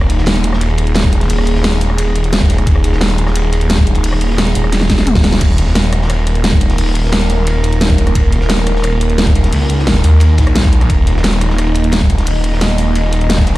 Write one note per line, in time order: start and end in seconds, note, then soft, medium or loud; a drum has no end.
0.00 1.28 D#1 loud
0.00 5.37 A#3 medium
0.00 5.37 D#4 medium
0.00 5.39 G#4 medium
0.00 cross-stick soft
0.10 closed hi-hat medium
0.10 ride medium
0.18 snare medium
0.26 snare loud
0.26 closed hi-hat medium
0.26 ride medium
0.36 closed hi-hat soft
0.44 closed hi-hat medium
0.44 ride medium
0.53 cross-stick soft
0.53 snare medium
0.61 closed hi-hat medium
0.61 ride medium
0.70 ride soft
0.78 closed hi-hat medium
0.78 ride medium
0.87 closed hi-hat soft
0.94 snare loud
0.94 closed hi-hat medium
0.94 ride medium
1.04 kick loud
1.12 closed hi-hat medium
1.12 ride medium
1.21 snare medium
1.21 closed hi-hat soft
1.29 2.66 D#1 loud
1.29 closed hi-hat medium
1.29 open hi-hat medium
1.38 cross-stick soft
1.38 ride soft
1.45 closed hi-hat medium
1.45 ride medium
1.55 snare soft
1.63 snare loud
1.63 closed hi-hat medium
1.63 ride medium
1.73 closed hi-hat soft
1.81 open hi-hat medium
1.81 ride medium
1.90 cross-stick soft
1.98 closed hi-hat loud
1.98 ride loud
2.16 closed hi-hat medium
2.16 ride medium
2.24 closed hi-hat soft
2.33 snare loud
2.33 closed hi-hat medium
2.33 ride medium
2.41 kick loud
2.41 snare medium
2.49 snare medium
2.49 closed hi-hat medium
2.49 ride medium
2.58 cross-stick soft
2.58 closed hi-hat soft
2.67 4.03 D#1 loud
2.67 kick loud
2.67 closed hi-hat medium
2.67 ride medium
2.76 cross-stick soft
2.84 closed hi-hat medium
2.84 ride medium
2.92 snare medium
3.01 snare loud
3.01 closed hi-hat medium
3.01 ride medium
3.10 closed hi-hat soft
3.18 closed hi-hat medium
3.18 ride medium
3.26 cross-stick soft
3.26 snare soft
3.36 closed hi-hat loud
3.36 ride medium
3.43 ride soft
3.53 closed hi-hat medium
3.53 ride medium
3.61 closed hi-hat soft
3.69 snare loud
3.69 closed hi-hat loud
3.69 ride medium
3.77 kick loud
3.77 ride medium
3.87 closed hi-hat medium
3.95 closed hi-hat soft
3.95 ride medium
4.04 4.54 D#1 loud
4.04 closed hi-hat loud
4.04 open hi-hat medium
4.13 cross-stick soft
4.13 ride soft
4.21 closed hi-hat medium
4.21 ride medium
4.30 snare soft
4.38 snare loud
4.38 closed hi-hat loud
4.38 ride medium
4.47 closed hi-hat soft
4.55 4.88 D#1 loud
4.55 open hi-hat medium
4.55 ride medium
4.64 cross-stick soft
4.72 snare medium
4.72 closed hi-hat loud
4.72 ride medium
4.81 snare medium
4.89 5.40 D#1 loud
4.89 kick medium
4.89 snare medium
4.89 closed hi-hat medium
4.89 ride medium
4.98 snare medium
4.98 closed hi-hat soft
5.07 closed hi-hat loud
5.07 mid tom medium
5.15 kick loud
5.15 snare medium
5.23 snare loud
5.23 snare soft
5.23 closed hi-hat medium
5.23 ride medium
5.32 snare medium
5.32 closed hi-hat soft
5.41 6.77 D#1 loud
5.41 13.58 A#3 medium
5.41 13.58 D#4 medium
5.41 10.88 A#4 medium
5.41 kick loud
5.41 closed hi-hat medium
5.41 ride medium
5.41 crash loud
5.58 closed hi-hat medium
5.58 ride medium
5.67 snare soft
5.75 snare loud
5.75 closed hi-hat medium
5.75 ride medium
5.84 closed hi-hat soft
5.92 cross-stick soft
5.92 closed hi-hat medium
5.92 ride medium
6.02 snare medium
6.10 cross-stick medium
6.10 closed hi-hat loud
6.10 ride loud
6.19 ride soft
6.27 closed hi-hat medium
6.27 ride medium
6.35 closed hi-hat soft
6.44 snare loud
6.44 closed hi-hat loud
6.44 ride medium
6.53 kick loud
6.61 closed hi-hat medium
6.61 ride medium
6.69 snare medium
6.69 closed hi-hat soft
6.78 8.14 D#1 loud
6.78 closed hi-hat medium
6.78 open hi-hat medium
6.87 ride soft
6.95 closed hi-hat medium
6.95 ride medium
7.05 snare soft
7.12 snare loud
7.12 closed hi-hat medium
7.12 ride medium
7.21 closed hi-hat soft
7.30 open hi-hat medium
7.30 ride medium
7.47 closed hi-hat loud
7.47 ride loud
7.64 closed hi-hat medium
7.64 ride medium
7.73 closed hi-hat soft
7.81 snare loud
7.81 closed hi-hat loud
7.81 ride medium
7.90 kick loud
7.90 snare medium
7.98 snare soft
7.98 closed hi-hat medium
7.98 ride medium
8.07 cross-stick soft
8.07 closed hi-hat soft
8.15 9.51 D#1 loud
8.15 kick loud
8.15 closed hi-hat medium
8.15 ride medium
8.32 closed hi-hat medium
8.32 ride medium
8.41 snare medium
8.49 snare loud
8.49 closed hi-hat medium
8.49 ride medium
8.58 closed hi-hat soft
8.67 cross-stick soft
8.67 closed hi-hat medium
8.67 ride medium
8.76 snare soft
8.83 cross-stick soft
8.83 closed hi-hat loud
8.83 ride medium
8.93 ride soft
9.01 closed hi-hat medium
9.01 ride medium
9.10 closed hi-hat soft
9.18 snare loud
9.18 closed hi-hat medium
9.18 ride medium
9.27 kick loud
9.35 closed hi-hat medium
9.35 ride medium
9.44 snare medium
9.44 closed hi-hat soft
9.53 10.03 C#2 loud
9.53 closed hi-hat medium
9.53 open hi-hat medium
9.62 ride soft
9.70 closed hi-hat medium
9.70 ride medium
9.79 snare soft
9.87 snare loud
9.87 closed hi-hat medium
9.87 ride medium
9.96 closed hi-hat soft
10.04 10.37 D#2 loud
10.04 open hi-hat medium
10.04 ride medium
10.20 closed hi-hat loud
10.20 ride loud
10.38 10.88 A#1 loud
10.38 kick medium
10.38 snare loud
10.38 closed hi-hat medium
10.38 ride medium
10.47 cross-stick medium
10.47 closed hi-hat soft
10.55 snare loud
10.55 closed hi-hat medium
10.55 ride medium
10.64 kick loud
10.64 snare loud
10.64 ride medium
10.73 closed hi-hat medium
10.81 cross-stick soft
10.81 closed hi-hat soft
10.81 ride medium
10.89 12.26 D#1 loud
10.89 13.58 D#5 medium
10.89 kick loud
10.89 closed hi-hat medium
10.89 ride medium
11.07 closed hi-hat medium
11.07 ride medium
11.17 snare medium
11.23 snare loud
11.23 closed hi-hat medium
11.23 ride medium
11.33 closed hi-hat soft
11.41 cross-stick soft
11.41 closed hi-hat medium
11.41 ride medium
11.50 snare soft
11.58 cross-stick soft
11.58 closed hi-hat medium
11.58 ride medium
11.67 ride soft
11.74 closed hi-hat medium
11.74 ride medium
11.84 closed hi-hat soft
11.92 snare loud
11.92 closed hi-hat medium
11.92 ride medium
12.01 kick loud
12.10 closed hi-hat medium
12.10 ride medium
12.18 snare medium
12.18 closed hi-hat soft
12.26 13.58 D#1 loud
12.26 closed hi-hat medium
12.26 open hi-hat medium
12.35 ride soft
12.44 closed hi-hat medium
12.44 ride medium
12.53 snare soft
12.61 snare loud
12.61 closed hi-hat medium
12.61 ride medium
12.70 closed hi-hat soft
12.78 open hi-hat medium
12.78 ride medium
12.96 closed hi-hat medium
12.96 ride medium
13.13 closed hi-hat medium
13.13 ride medium
13.21 closed hi-hat soft
13.30 snare loud
13.30 closed hi-hat medium
13.30 ride loud
13.38 kick loud
13.38 snare medium
13.47 snare medium
13.47 closed hi-hat medium
13.47 ride medium